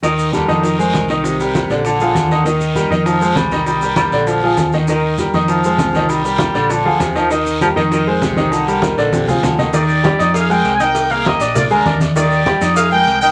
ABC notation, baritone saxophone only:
X:1
M:4/4
L:1/8
Q:1/4=198
K:Eb
V:1 name="Baritone saxophone" clef=bass
E,2 D,2 E,4 | C,4 D,4 | E,4 F,2 G,2 | G,2 G,2 F,3 z |
E,2 z2 F,4 | G,4 D,2 C, F, | E,2 F, E, E,2 C,2 | D,2 E,2 C,2 D,2 |
z8 | z8 | z8 |]